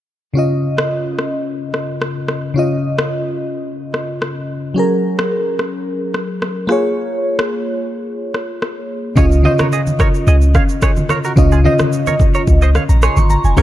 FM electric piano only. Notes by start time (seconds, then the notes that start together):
0.34 C#3 C#4 F4
0.39 D#5
2.54 C#3 C#4 F4
2.59 D#5
4.74 F#3 C#4 G#4
4.79 A#4
6.67 A#3 F4 G#4
6.72 C#5
9.16 C#3 C#4 F4 D#5
9.43 C#3 C#4 F4 D#5
11.36 C#3 C#4 F4 D#5
11.64 C#3 C#4 F4 D#5
12.89 A#5
13.03 C6
13.17 C#6
13.30 A#5
13.45 G#5
13.57 F#3 C#4 G#4 A#4